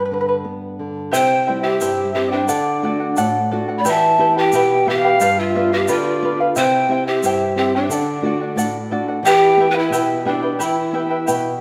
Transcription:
Already playing: G2
0.05 B4
0.12 D3 B4
0.21 B4
0.28 B4
0.44 B3
0.79 D3
1.12 C3 E4 G4 C5 E5 G5, shaker
1.47 G3 C4 E4 C5 E5 G5
1.62 E4 G4 C5 E5 G5
1.81 G2 E4 G4 C5 E5 G5, shaker
2.11 G3 C4 G4 E5
2.16 E4 C5 G5
2.28 D4 D5 G5
2.33 E4 C5
2.48 D3 A4 D5 F#5, shaker
2.83 A3 D4 F#4 A4 D5 F#5
3.00 D5 F#5
3.17 A2 A4 D5 F#5, shaker
3.51 A3 D4 F#4 A4 D5 F#5
3.68 D5 F#5
3.78 D5 B5
3.84 E3 E4 G4 B4 E5 G5 B5, shaker
3.90 A5
4.18 B3 E4 G4 B4 E5 G5
4.35 E4 G4 B4 G5
4.52 B2 E4 G4 B4 E5 G5, shaker
4.86 E3 B3 E4 G4 B4 E5 F5 G5
5.04 E4 B4 G5
5.20 G2 F4 G4 B4 D5 F5, shaker
5.38 F4 E5
5.55 B3 F4 G4 B4 D5 F5
5.72 F4 G4 B4 F5
5.88 D3 F4 G4 B4 D5 F5, shaker
6.22 B3 F4 G4 B4 D5 F5
6.40 F4 B4 F5
6.56 C3 E4 G4 C5 E5 G5, shaker
6.89 C4 E4 G4 C5 E5 G5
7.07 E4 G4 C5 E5 G5
7.23 G2 E4 G4 C5 E5 G5, shaker
7.56 C4 E4 G4 C5 E5 G5
7.75 D4 E4 C5 D5 G5
7.89 D3 A4 D5 F#5, shaker
8.22 A3 D4 F#4 A4 D5
8.26 F#5
8.41 D5 F#5
8.56 A2 A4 D5 F#5, shaker
8.91 A3 D4 F#4 A4 D5 F#5
9.08 D5 F#5
9.23 E3 E4 G4 B4 E5 G5, shaker
9.57 B3 E4 G4 E5 G5
9.61 B4
9.68 B4 G5
9.74 E4 B4 E5 G5
9.79 E4
9.90 B2 E4 G4 B4 E5 G5, shaker
10.25 B3 D4 E4 G4 B4 D5 E5 G5
10.42 E4 B4 G5
10.59 E3 E4 G4 B4 E5 G5, shaker
10.93 B3 E4 G4 B4 E5 G5
11.10 E4 B4 G5
11.27 B2 E4 G4 B4 E5 G5, shaker

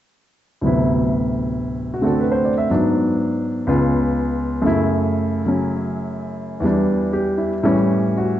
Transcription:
0.61 D2 A2 F#3 B3
0.66 C3 E4
1.94 F#4
2.01 D3 A3 C4 D4 F#4
2.07 A4
2.20 B4
2.32 C5
2.45 D5
2.58 E5
2.70 G#2 F#3 B3 D4
3.67 C#2 C#3 B3 F4
4.62 F#2 C#3 A3
4.67 E4
5.44 C#3 F#3 C#4
6.60 E2 E3 G3
6.65 D4
7.13 G4
7.38 E4
7.63 A2 E3 G3 C#4
8.17 F#4

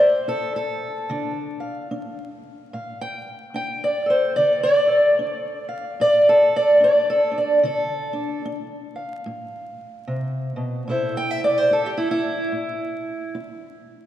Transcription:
Already playing: A2 A4
0.00 C5
0.28 E4 A4
0.56 A4
1.10 D3 D4
1.60 F5
1.91 D4
2.73 A2 F5
3.01 G5
3.54 D4 G5
3.84 D5
4.06 A4
4.10 C5
4.36 D3 D5
4.63 D5
4.87 A4
5.19 D4
5.69 F5
6.00 A2 D5
6.29 A4
6.56 D5
6.80 D4 D5
7.10 A4
7.31 D4
7.38 D5
7.63 D3 A4
8.13 D4
8.45 D4
8.96 F5
9.26 A2
10.07 C3
10.56 B2
10.88 A2 E4 A4 C5 E5
11.17 G5
11.31 E5
11.44 D5
11.58 C5
11.71 E4 A4
11.86 G4
11.97 E4
12.11 E4
12.52 A2
13.35 E4

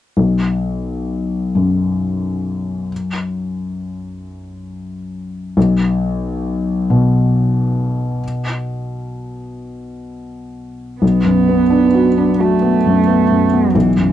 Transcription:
0.17 B1
1.55 F#2
5.57 B1
6.90 B2
11.01 B1 B3
11.24 F#2
11.49 B3
11.70 D4
11.95 F#4
12.18 D4
12.40 A3 F#4
12.62 B3
12.86 F#2
13.07 B3
13.31 F#2
13.53 B3
13.74 B1 E3
13.97 F#2

